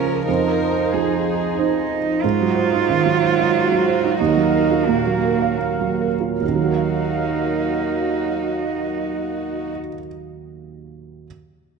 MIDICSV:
0, 0, Header, 1, 5, 480
1, 0, Start_track
1, 0, Tempo, 648649
1, 206, Time_signature, 3, 2, 24, 8
1, 2607, Tempo, 677201
1, 3567, Tempo, 739827
1, 4047, Tempo, 803213
1, 7736, End_track
2, 0, Start_track
2, 0, Title_t, "Analog synth pad"
2, 0, Program_c, 0, 89
2, 0, Note_on_c, 0, 53, 67
2, 0, Note_on_c, 0, 65, 56
2, 0, Note_on_c, 0, 70, 57
2, 206, Note_on_c, 0, 63, 51
2, 206, Note_on_c, 0, 72, 54
2, 209, Note_off_c, 0, 65, 0
2, 216, Note_off_c, 0, 70, 0
2, 1640, Note_off_c, 0, 72, 0
2, 1644, Note_off_c, 0, 63, 0
2, 1648, Note_on_c, 0, 54, 50
2, 1648, Note_on_c, 0, 72, 55
2, 1653, Note_on_c, 0, 63, 50
2, 1657, Note_off_c, 0, 53, 0
2, 3049, Note_off_c, 0, 72, 0
2, 3051, Note_off_c, 0, 63, 0
2, 3077, Note_on_c, 0, 70, 49
2, 3078, Note_on_c, 0, 77, 51
2, 4504, Note_off_c, 0, 54, 0
2, 4524, Note_off_c, 0, 70, 0
2, 4525, Note_off_c, 0, 77, 0
2, 4532, Note_on_c, 0, 70, 42
2, 4532, Note_on_c, 0, 77, 45
2, 4533, Note_on_c, 0, 54, 44
2, 6510, Note_off_c, 0, 70, 0
2, 6511, Note_off_c, 0, 54, 0
2, 6511, Note_off_c, 0, 77, 0
2, 7736, End_track
3, 0, Start_track
3, 0, Title_t, "Violin section"
3, 0, Program_c, 1, 48
3, 0, Note_on_c, 1, 70, 55
3, 189, Note_off_c, 1, 70, 0
3, 198, Note_on_c, 1, 70, 55
3, 674, Note_off_c, 1, 70, 0
3, 678, Note_on_c, 1, 68, 42
3, 1404, Note_off_c, 1, 68, 0
3, 1649, Note_on_c, 1, 66, 44
3, 4349, Note_off_c, 1, 66, 0
3, 4524, Note_on_c, 1, 66, 32
3, 6502, Note_off_c, 1, 66, 0
3, 7736, End_track
4, 0, Start_track
4, 0, Title_t, "Cello"
4, 0, Program_c, 2, 42
4, 0, Note_on_c, 2, 61, 47
4, 204, Note_off_c, 2, 61, 0
4, 208, Note_on_c, 2, 63, 43
4, 1149, Note_off_c, 2, 63, 0
4, 1163, Note_on_c, 2, 63, 54
4, 1642, Note_on_c, 2, 65, 70
4, 1653, Note_off_c, 2, 63, 0
4, 3072, Note_off_c, 2, 65, 0
4, 3076, Note_on_c, 2, 63, 64
4, 3563, Note_on_c, 2, 58, 51
4, 3573, Note_off_c, 2, 63, 0
4, 4045, Note_off_c, 2, 58, 0
4, 4528, Note_on_c, 2, 63, 34
4, 6506, Note_off_c, 2, 63, 0
4, 7736, End_track
5, 0, Start_track
5, 0, Title_t, "Felt piano"
5, 0, Program_c, 3, 0
5, 0, Control_c, 3, 64, 127
5, 0, Note_on_c, 3, 37, 55
5, 0, Note_on_c, 3, 53, 38
5, 0, Note_on_c, 3, 65, 37
5, 0, Note_on_c, 3, 70, 38
5, 181, Note_off_c, 3, 37, 0
5, 182, Note_off_c, 3, 65, 0
5, 184, Note_off_c, 3, 70, 0
5, 210, Note_on_c, 3, 41, 39
5, 221, Control_c, 3, 64, 0
5, 226, Note_off_c, 3, 53, 0
5, 342, Control_c, 3, 64, 127
5, 694, Note_on_c, 3, 53, 30
5, 1172, Note_on_c, 3, 63, 29
5, 1174, Note_on_c, 3, 72, 31
5, 1460, Note_off_c, 3, 53, 0
5, 1621, Note_off_c, 3, 41, 0
5, 1622, Note_off_c, 3, 63, 0
5, 1622, Note_off_c, 3, 72, 0
5, 1656, Note_on_c, 3, 44, 39
5, 1663, Control_c, 3, 64, 0
5, 1785, Note_on_c, 3, 54, 32
5, 1812, Control_c, 3, 64, 127
5, 1885, Note_on_c, 3, 72, 33
5, 1966, Note_off_c, 3, 54, 0
5, 2020, Note_on_c, 3, 63, 31
5, 2077, Note_off_c, 3, 72, 0
5, 2142, Note_on_c, 3, 51, 30
5, 2204, Note_off_c, 3, 63, 0
5, 2262, Note_on_c, 3, 54, 34
5, 2326, Note_off_c, 3, 51, 0
5, 2379, Note_on_c, 3, 72, 33
5, 2446, Note_off_c, 3, 54, 0
5, 2508, Note_on_c, 3, 63, 36
5, 2566, Note_off_c, 3, 72, 0
5, 2743, Note_on_c, 3, 54, 38
5, 2852, Note_on_c, 3, 72, 35
5, 2875, Note_off_c, 3, 63, 0
5, 2921, Note_off_c, 3, 54, 0
5, 2973, Note_on_c, 3, 63, 37
5, 3035, Note_off_c, 3, 72, 0
5, 3053, Note_off_c, 3, 44, 0
5, 3084, Note_off_c, 3, 63, 0
5, 3091, Control_c, 3, 64, 0
5, 3091, Note_on_c, 3, 39, 51
5, 3203, Control_c, 3, 64, 127
5, 3205, Note_on_c, 3, 54, 38
5, 3320, Note_on_c, 3, 70, 38
5, 3396, Note_off_c, 3, 54, 0
5, 3451, Note_on_c, 3, 65, 36
5, 3518, Note_off_c, 3, 70, 0
5, 3571, Note_on_c, 3, 46, 36
5, 3642, Note_off_c, 3, 65, 0
5, 3690, Note_on_c, 3, 54, 31
5, 3757, Note_off_c, 3, 46, 0
5, 3809, Note_on_c, 3, 70, 37
5, 3878, Note_off_c, 3, 54, 0
5, 3919, Note_on_c, 3, 77, 32
5, 4001, Note_off_c, 3, 70, 0
5, 4161, Note_on_c, 3, 54, 30
5, 4281, Note_on_c, 3, 70, 27
5, 4307, Note_off_c, 3, 77, 0
5, 4356, Note_off_c, 3, 54, 0
5, 4398, Note_on_c, 3, 65, 21
5, 4478, Note_off_c, 3, 70, 0
5, 4508, Note_off_c, 3, 39, 0
5, 4517, Note_on_c, 3, 39, 29
5, 4524, Note_off_c, 3, 65, 0
5, 4541, Control_c, 3, 64, 0
5, 4564, Note_on_c, 3, 51, 26
5, 4604, Note_on_c, 3, 54, 28
5, 4645, Note_on_c, 3, 66, 28
5, 4686, Note_on_c, 3, 70, 27
5, 4691, Control_c, 3, 64, 127
5, 4728, Note_on_c, 3, 77, 27
5, 6495, Note_off_c, 3, 39, 0
5, 6543, Note_off_c, 3, 51, 0
5, 6583, Note_off_c, 3, 54, 0
5, 6623, Note_off_c, 3, 66, 0
5, 6664, Note_off_c, 3, 70, 0
5, 6707, Note_off_c, 3, 77, 0
5, 7423, Control_c, 3, 64, 0
5, 7736, End_track
0, 0, End_of_file